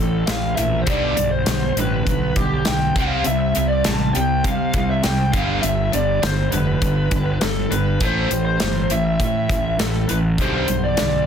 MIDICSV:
0, 0, Header, 1, 5, 480
1, 0, Start_track
1, 0, Tempo, 594059
1, 705, Time_signature, 4, 2, 24, 8
1, 9101, End_track
2, 0, Start_track
2, 0, Title_t, "Lead electric guitar"
2, 0, Program_c, 0, 29
2, 0, Note_on_c, 0, 69, 79
2, 211, Note_on_c, 0, 77, 82
2, 235, Note_off_c, 0, 69, 0
2, 441, Note_off_c, 0, 77, 0
2, 448, Note_on_c, 0, 76, 86
2, 646, Note_off_c, 0, 76, 0
2, 660, Note_on_c, 0, 72, 66
2, 711, Note_off_c, 0, 72, 0
2, 716, Note_on_c, 0, 74, 82
2, 1056, Note_off_c, 0, 74, 0
2, 1059, Note_on_c, 0, 72, 85
2, 1398, Note_off_c, 0, 72, 0
2, 1457, Note_on_c, 0, 71, 85
2, 1908, Note_on_c, 0, 67, 83
2, 1937, Note_off_c, 0, 71, 0
2, 2156, Note_off_c, 0, 67, 0
2, 2156, Note_on_c, 0, 79, 92
2, 2398, Note_on_c, 0, 77, 87
2, 2400, Note_off_c, 0, 79, 0
2, 2626, Note_off_c, 0, 77, 0
2, 2630, Note_on_c, 0, 76, 92
2, 2973, Note_off_c, 0, 76, 0
2, 2976, Note_on_c, 0, 74, 82
2, 3094, Note_off_c, 0, 74, 0
2, 3114, Note_on_c, 0, 81, 93
2, 3336, Note_off_c, 0, 81, 0
2, 3346, Note_on_c, 0, 79, 96
2, 3594, Note_on_c, 0, 77, 94
2, 3596, Note_off_c, 0, 79, 0
2, 3960, Note_off_c, 0, 77, 0
2, 3963, Note_on_c, 0, 76, 84
2, 4065, Note_on_c, 0, 79, 97
2, 4069, Note_off_c, 0, 76, 0
2, 4291, Note_off_c, 0, 79, 0
2, 4298, Note_on_c, 0, 77, 88
2, 4527, Note_off_c, 0, 77, 0
2, 4541, Note_on_c, 0, 76, 90
2, 4791, Note_off_c, 0, 76, 0
2, 4794, Note_on_c, 0, 74, 89
2, 5028, Note_on_c, 0, 72, 84
2, 5040, Note_off_c, 0, 74, 0
2, 5253, Note_off_c, 0, 72, 0
2, 5265, Note_on_c, 0, 71, 83
2, 5956, Note_off_c, 0, 71, 0
2, 5998, Note_on_c, 0, 69, 80
2, 6228, Note_off_c, 0, 69, 0
2, 6232, Note_on_c, 0, 71, 80
2, 6479, Note_off_c, 0, 71, 0
2, 6501, Note_on_c, 0, 72, 81
2, 6820, Note_off_c, 0, 72, 0
2, 6830, Note_on_c, 0, 72, 82
2, 7201, Note_off_c, 0, 72, 0
2, 7203, Note_on_c, 0, 76, 86
2, 7912, Note_on_c, 0, 69, 79
2, 7937, Note_off_c, 0, 76, 0
2, 8147, Note_off_c, 0, 69, 0
2, 8150, Note_on_c, 0, 71, 83
2, 8215, Note_off_c, 0, 71, 0
2, 8396, Note_on_c, 0, 72, 85
2, 8757, Note_on_c, 0, 74, 78
2, 8763, Note_off_c, 0, 72, 0
2, 9101, Note_off_c, 0, 74, 0
2, 9101, End_track
3, 0, Start_track
3, 0, Title_t, "Overdriven electric guitar"
3, 0, Program_c, 1, 29
3, 0, Note_on_c, 1, 45, 61
3, 0, Note_on_c, 1, 52, 63
3, 197, Note_off_c, 1, 45, 0
3, 199, Note_off_c, 1, 52, 0
3, 222, Note_on_c, 1, 45, 62
3, 226, Note_on_c, 1, 52, 75
3, 440, Note_off_c, 1, 45, 0
3, 442, Note_off_c, 1, 52, 0
3, 466, Note_on_c, 1, 52, 71
3, 470, Note_on_c, 1, 45, 59
3, 682, Note_off_c, 1, 52, 0
3, 684, Note_off_c, 1, 45, 0
3, 698, Note_on_c, 1, 43, 71
3, 704, Note_on_c, 1, 50, 87
3, 709, Note_on_c, 1, 55, 95
3, 926, Note_off_c, 1, 43, 0
3, 929, Note_off_c, 1, 50, 0
3, 933, Note_off_c, 1, 55, 0
3, 935, Note_on_c, 1, 43, 59
3, 939, Note_on_c, 1, 50, 71
3, 1157, Note_off_c, 1, 43, 0
3, 1159, Note_off_c, 1, 50, 0
3, 1187, Note_on_c, 1, 43, 74
3, 1190, Note_on_c, 1, 50, 75
3, 1403, Note_off_c, 1, 43, 0
3, 1405, Note_off_c, 1, 50, 0
3, 1433, Note_on_c, 1, 43, 62
3, 1438, Note_on_c, 1, 50, 75
3, 1647, Note_off_c, 1, 43, 0
3, 1649, Note_off_c, 1, 50, 0
3, 1669, Note_on_c, 1, 43, 62
3, 1676, Note_on_c, 1, 50, 82
3, 1885, Note_off_c, 1, 43, 0
3, 1888, Note_off_c, 1, 50, 0
3, 1911, Note_on_c, 1, 43, 60
3, 1918, Note_on_c, 1, 50, 66
3, 2126, Note_off_c, 1, 43, 0
3, 2130, Note_off_c, 1, 50, 0
3, 2156, Note_on_c, 1, 43, 72
3, 2164, Note_on_c, 1, 50, 75
3, 2369, Note_off_c, 1, 43, 0
3, 2373, Note_off_c, 1, 50, 0
3, 2395, Note_on_c, 1, 48, 81
3, 2403, Note_on_c, 1, 55, 81
3, 2406, Note_on_c, 1, 60, 81
3, 2618, Note_off_c, 1, 48, 0
3, 2622, Note_off_c, 1, 55, 0
3, 2623, Note_off_c, 1, 60, 0
3, 2636, Note_on_c, 1, 48, 64
3, 2640, Note_on_c, 1, 55, 74
3, 2849, Note_off_c, 1, 48, 0
3, 2851, Note_off_c, 1, 55, 0
3, 2883, Note_on_c, 1, 48, 64
3, 2888, Note_on_c, 1, 55, 66
3, 3093, Note_off_c, 1, 48, 0
3, 3095, Note_off_c, 1, 55, 0
3, 3123, Note_on_c, 1, 48, 69
3, 3128, Note_on_c, 1, 55, 80
3, 3333, Note_off_c, 1, 48, 0
3, 3336, Note_off_c, 1, 55, 0
3, 3366, Note_on_c, 1, 55, 77
3, 3369, Note_on_c, 1, 48, 64
3, 3574, Note_off_c, 1, 55, 0
3, 3576, Note_off_c, 1, 48, 0
3, 3608, Note_on_c, 1, 48, 69
3, 3617, Note_on_c, 1, 55, 74
3, 3816, Note_off_c, 1, 48, 0
3, 3820, Note_off_c, 1, 55, 0
3, 3851, Note_on_c, 1, 48, 66
3, 3853, Note_on_c, 1, 55, 64
3, 4057, Note_off_c, 1, 48, 0
3, 4058, Note_off_c, 1, 55, 0
3, 4086, Note_on_c, 1, 48, 68
3, 4089, Note_on_c, 1, 55, 68
3, 4295, Note_off_c, 1, 48, 0
3, 4296, Note_off_c, 1, 55, 0
3, 4311, Note_on_c, 1, 43, 81
3, 4317, Note_on_c, 1, 50, 87
3, 4324, Note_on_c, 1, 55, 95
3, 4537, Note_off_c, 1, 43, 0
3, 4540, Note_off_c, 1, 50, 0
3, 4543, Note_off_c, 1, 55, 0
3, 4553, Note_on_c, 1, 43, 71
3, 4555, Note_on_c, 1, 50, 74
3, 4768, Note_off_c, 1, 43, 0
3, 4770, Note_off_c, 1, 50, 0
3, 4786, Note_on_c, 1, 43, 63
3, 4794, Note_on_c, 1, 50, 65
3, 5005, Note_off_c, 1, 43, 0
3, 5009, Note_off_c, 1, 50, 0
3, 5032, Note_on_c, 1, 43, 66
3, 5032, Note_on_c, 1, 50, 74
3, 5248, Note_off_c, 1, 43, 0
3, 5248, Note_off_c, 1, 50, 0
3, 5280, Note_on_c, 1, 43, 65
3, 5284, Note_on_c, 1, 50, 78
3, 5492, Note_off_c, 1, 43, 0
3, 5494, Note_off_c, 1, 50, 0
3, 5513, Note_on_c, 1, 43, 65
3, 5514, Note_on_c, 1, 50, 72
3, 5728, Note_off_c, 1, 43, 0
3, 5729, Note_off_c, 1, 50, 0
3, 5750, Note_on_c, 1, 43, 66
3, 5754, Note_on_c, 1, 50, 67
3, 5967, Note_off_c, 1, 43, 0
3, 5969, Note_off_c, 1, 50, 0
3, 5991, Note_on_c, 1, 43, 69
3, 5996, Note_on_c, 1, 50, 76
3, 6207, Note_off_c, 1, 43, 0
3, 6210, Note_off_c, 1, 50, 0
3, 6227, Note_on_c, 1, 43, 65
3, 6235, Note_on_c, 1, 50, 69
3, 6445, Note_off_c, 1, 43, 0
3, 6449, Note_off_c, 1, 50, 0
3, 6474, Note_on_c, 1, 45, 73
3, 6481, Note_on_c, 1, 52, 80
3, 6488, Note_on_c, 1, 57, 94
3, 6698, Note_off_c, 1, 45, 0
3, 6702, Note_off_c, 1, 52, 0
3, 6705, Note_off_c, 1, 57, 0
3, 6715, Note_on_c, 1, 45, 63
3, 6715, Note_on_c, 1, 52, 70
3, 6929, Note_off_c, 1, 45, 0
3, 6929, Note_off_c, 1, 52, 0
3, 6959, Note_on_c, 1, 45, 71
3, 6965, Note_on_c, 1, 52, 82
3, 7171, Note_off_c, 1, 45, 0
3, 7174, Note_off_c, 1, 52, 0
3, 7198, Note_on_c, 1, 45, 69
3, 7204, Note_on_c, 1, 52, 71
3, 7410, Note_off_c, 1, 45, 0
3, 7413, Note_off_c, 1, 52, 0
3, 7437, Note_on_c, 1, 45, 64
3, 7441, Note_on_c, 1, 52, 72
3, 7650, Note_off_c, 1, 45, 0
3, 7652, Note_off_c, 1, 52, 0
3, 7684, Note_on_c, 1, 52, 72
3, 7686, Note_on_c, 1, 45, 62
3, 7893, Note_off_c, 1, 52, 0
3, 7894, Note_off_c, 1, 45, 0
3, 7917, Note_on_c, 1, 45, 72
3, 7922, Note_on_c, 1, 52, 78
3, 8129, Note_off_c, 1, 45, 0
3, 8132, Note_off_c, 1, 52, 0
3, 8156, Note_on_c, 1, 45, 62
3, 8158, Note_on_c, 1, 52, 67
3, 8368, Note_off_c, 1, 45, 0
3, 8370, Note_off_c, 1, 52, 0
3, 8404, Note_on_c, 1, 43, 79
3, 8409, Note_on_c, 1, 50, 82
3, 8414, Note_on_c, 1, 55, 81
3, 8622, Note_off_c, 1, 43, 0
3, 8624, Note_off_c, 1, 50, 0
3, 8627, Note_off_c, 1, 55, 0
3, 8641, Note_on_c, 1, 43, 64
3, 8645, Note_on_c, 1, 50, 64
3, 8851, Note_off_c, 1, 43, 0
3, 8853, Note_off_c, 1, 50, 0
3, 8880, Note_on_c, 1, 43, 70
3, 8881, Note_on_c, 1, 50, 73
3, 9090, Note_off_c, 1, 43, 0
3, 9090, Note_off_c, 1, 50, 0
3, 9101, End_track
4, 0, Start_track
4, 0, Title_t, "Fingered electric bass"
4, 0, Program_c, 2, 33
4, 0, Note_on_c, 2, 33, 79
4, 195, Note_off_c, 2, 33, 0
4, 226, Note_on_c, 2, 33, 79
4, 434, Note_off_c, 2, 33, 0
4, 471, Note_on_c, 2, 34, 78
4, 677, Note_off_c, 2, 34, 0
4, 710, Note_on_c, 2, 35, 86
4, 917, Note_off_c, 2, 35, 0
4, 956, Note_on_c, 2, 35, 80
4, 1161, Note_off_c, 2, 35, 0
4, 1188, Note_on_c, 2, 35, 84
4, 1397, Note_off_c, 2, 35, 0
4, 1426, Note_on_c, 2, 33, 80
4, 1636, Note_off_c, 2, 33, 0
4, 1677, Note_on_c, 2, 35, 88
4, 1882, Note_off_c, 2, 35, 0
4, 1909, Note_on_c, 2, 35, 80
4, 2118, Note_off_c, 2, 35, 0
4, 2162, Note_on_c, 2, 35, 85
4, 2365, Note_off_c, 2, 35, 0
4, 2393, Note_on_c, 2, 36, 83
4, 2600, Note_off_c, 2, 36, 0
4, 2642, Note_on_c, 2, 36, 89
4, 2845, Note_off_c, 2, 36, 0
4, 2880, Note_on_c, 2, 36, 83
4, 3085, Note_off_c, 2, 36, 0
4, 3124, Note_on_c, 2, 33, 83
4, 3327, Note_off_c, 2, 33, 0
4, 3358, Note_on_c, 2, 36, 86
4, 3564, Note_off_c, 2, 36, 0
4, 3595, Note_on_c, 2, 48, 93
4, 3802, Note_off_c, 2, 48, 0
4, 3830, Note_on_c, 2, 36, 81
4, 4039, Note_off_c, 2, 36, 0
4, 4082, Note_on_c, 2, 36, 86
4, 4286, Note_off_c, 2, 36, 0
4, 4317, Note_on_c, 2, 31, 79
4, 4523, Note_off_c, 2, 31, 0
4, 4555, Note_on_c, 2, 31, 89
4, 4762, Note_off_c, 2, 31, 0
4, 4795, Note_on_c, 2, 31, 87
4, 5002, Note_off_c, 2, 31, 0
4, 5033, Note_on_c, 2, 31, 81
4, 5241, Note_off_c, 2, 31, 0
4, 5271, Note_on_c, 2, 29, 77
4, 5480, Note_off_c, 2, 29, 0
4, 5511, Note_on_c, 2, 31, 89
4, 5720, Note_off_c, 2, 31, 0
4, 5756, Note_on_c, 2, 31, 76
4, 5962, Note_off_c, 2, 31, 0
4, 5996, Note_on_c, 2, 31, 79
4, 6202, Note_off_c, 2, 31, 0
4, 6228, Note_on_c, 2, 31, 76
4, 6438, Note_off_c, 2, 31, 0
4, 6473, Note_on_c, 2, 33, 88
4, 6681, Note_off_c, 2, 33, 0
4, 6713, Note_on_c, 2, 33, 81
4, 6921, Note_off_c, 2, 33, 0
4, 6963, Note_on_c, 2, 31, 79
4, 7166, Note_off_c, 2, 31, 0
4, 7196, Note_on_c, 2, 33, 77
4, 7402, Note_off_c, 2, 33, 0
4, 7436, Note_on_c, 2, 45, 86
4, 7642, Note_off_c, 2, 45, 0
4, 7678, Note_on_c, 2, 33, 81
4, 7883, Note_off_c, 2, 33, 0
4, 7921, Note_on_c, 2, 33, 81
4, 8124, Note_off_c, 2, 33, 0
4, 8164, Note_on_c, 2, 33, 80
4, 8396, Note_off_c, 2, 33, 0
4, 8396, Note_on_c, 2, 35, 90
4, 8602, Note_off_c, 2, 35, 0
4, 8640, Note_on_c, 2, 35, 81
4, 8844, Note_off_c, 2, 35, 0
4, 8890, Note_on_c, 2, 35, 77
4, 9089, Note_off_c, 2, 35, 0
4, 9101, End_track
5, 0, Start_track
5, 0, Title_t, "Drums"
5, 221, Note_on_c, 9, 42, 78
5, 224, Note_on_c, 9, 38, 106
5, 301, Note_off_c, 9, 42, 0
5, 305, Note_off_c, 9, 38, 0
5, 463, Note_on_c, 9, 42, 55
5, 544, Note_off_c, 9, 42, 0
5, 700, Note_on_c, 9, 42, 76
5, 705, Note_on_c, 9, 36, 98
5, 781, Note_off_c, 9, 42, 0
5, 786, Note_off_c, 9, 36, 0
5, 945, Note_on_c, 9, 42, 59
5, 1026, Note_off_c, 9, 42, 0
5, 1181, Note_on_c, 9, 42, 83
5, 1185, Note_on_c, 9, 38, 105
5, 1262, Note_off_c, 9, 42, 0
5, 1265, Note_off_c, 9, 38, 0
5, 1430, Note_on_c, 9, 42, 56
5, 1511, Note_off_c, 9, 42, 0
5, 1669, Note_on_c, 9, 36, 77
5, 1670, Note_on_c, 9, 42, 67
5, 1750, Note_off_c, 9, 36, 0
5, 1751, Note_off_c, 9, 42, 0
5, 1906, Note_on_c, 9, 42, 63
5, 1908, Note_on_c, 9, 36, 84
5, 1986, Note_off_c, 9, 42, 0
5, 1989, Note_off_c, 9, 36, 0
5, 2142, Note_on_c, 9, 42, 77
5, 2145, Note_on_c, 9, 38, 109
5, 2223, Note_off_c, 9, 42, 0
5, 2226, Note_off_c, 9, 38, 0
5, 2390, Note_on_c, 9, 36, 95
5, 2393, Note_on_c, 9, 42, 55
5, 2471, Note_off_c, 9, 36, 0
5, 2474, Note_off_c, 9, 42, 0
5, 2622, Note_on_c, 9, 42, 70
5, 2703, Note_off_c, 9, 42, 0
5, 2867, Note_on_c, 9, 42, 55
5, 2947, Note_off_c, 9, 42, 0
5, 3106, Note_on_c, 9, 42, 83
5, 3110, Note_on_c, 9, 38, 102
5, 3187, Note_off_c, 9, 42, 0
5, 3190, Note_off_c, 9, 38, 0
5, 3352, Note_on_c, 9, 42, 55
5, 3433, Note_off_c, 9, 42, 0
5, 3591, Note_on_c, 9, 36, 78
5, 3591, Note_on_c, 9, 42, 76
5, 3671, Note_off_c, 9, 36, 0
5, 3672, Note_off_c, 9, 42, 0
5, 3826, Note_on_c, 9, 42, 62
5, 3829, Note_on_c, 9, 36, 87
5, 3907, Note_off_c, 9, 42, 0
5, 3910, Note_off_c, 9, 36, 0
5, 4068, Note_on_c, 9, 42, 78
5, 4072, Note_on_c, 9, 38, 100
5, 4149, Note_off_c, 9, 42, 0
5, 4152, Note_off_c, 9, 38, 0
5, 4310, Note_on_c, 9, 42, 60
5, 4311, Note_on_c, 9, 36, 94
5, 4391, Note_off_c, 9, 42, 0
5, 4392, Note_off_c, 9, 36, 0
5, 4549, Note_on_c, 9, 42, 83
5, 4630, Note_off_c, 9, 42, 0
5, 4793, Note_on_c, 9, 42, 61
5, 4874, Note_off_c, 9, 42, 0
5, 5034, Note_on_c, 9, 42, 80
5, 5037, Note_on_c, 9, 38, 108
5, 5115, Note_off_c, 9, 42, 0
5, 5118, Note_off_c, 9, 38, 0
5, 5269, Note_on_c, 9, 42, 57
5, 5350, Note_off_c, 9, 42, 0
5, 5509, Note_on_c, 9, 36, 75
5, 5509, Note_on_c, 9, 42, 74
5, 5589, Note_off_c, 9, 42, 0
5, 5590, Note_off_c, 9, 36, 0
5, 5747, Note_on_c, 9, 42, 61
5, 5750, Note_on_c, 9, 36, 88
5, 5827, Note_off_c, 9, 42, 0
5, 5831, Note_off_c, 9, 36, 0
5, 5988, Note_on_c, 9, 42, 75
5, 5991, Note_on_c, 9, 38, 108
5, 6069, Note_off_c, 9, 42, 0
5, 6072, Note_off_c, 9, 38, 0
5, 6236, Note_on_c, 9, 42, 50
5, 6317, Note_off_c, 9, 42, 0
5, 6468, Note_on_c, 9, 42, 72
5, 6470, Note_on_c, 9, 36, 98
5, 6549, Note_off_c, 9, 42, 0
5, 6551, Note_off_c, 9, 36, 0
5, 6714, Note_on_c, 9, 42, 57
5, 6794, Note_off_c, 9, 42, 0
5, 6947, Note_on_c, 9, 42, 75
5, 6951, Note_on_c, 9, 38, 105
5, 7028, Note_off_c, 9, 42, 0
5, 7031, Note_off_c, 9, 38, 0
5, 7191, Note_on_c, 9, 42, 57
5, 7272, Note_off_c, 9, 42, 0
5, 7431, Note_on_c, 9, 36, 71
5, 7434, Note_on_c, 9, 42, 74
5, 7512, Note_off_c, 9, 36, 0
5, 7515, Note_off_c, 9, 42, 0
5, 7672, Note_on_c, 9, 36, 89
5, 7680, Note_on_c, 9, 42, 62
5, 7753, Note_off_c, 9, 36, 0
5, 7761, Note_off_c, 9, 42, 0
5, 7913, Note_on_c, 9, 42, 78
5, 7916, Note_on_c, 9, 38, 110
5, 7994, Note_off_c, 9, 42, 0
5, 7997, Note_off_c, 9, 38, 0
5, 8152, Note_on_c, 9, 42, 60
5, 8233, Note_off_c, 9, 42, 0
5, 8389, Note_on_c, 9, 42, 82
5, 8390, Note_on_c, 9, 36, 99
5, 8470, Note_off_c, 9, 42, 0
5, 8471, Note_off_c, 9, 36, 0
5, 8629, Note_on_c, 9, 42, 58
5, 8709, Note_off_c, 9, 42, 0
5, 8865, Note_on_c, 9, 42, 83
5, 8869, Note_on_c, 9, 38, 100
5, 8946, Note_off_c, 9, 42, 0
5, 8949, Note_off_c, 9, 38, 0
5, 9101, End_track
0, 0, End_of_file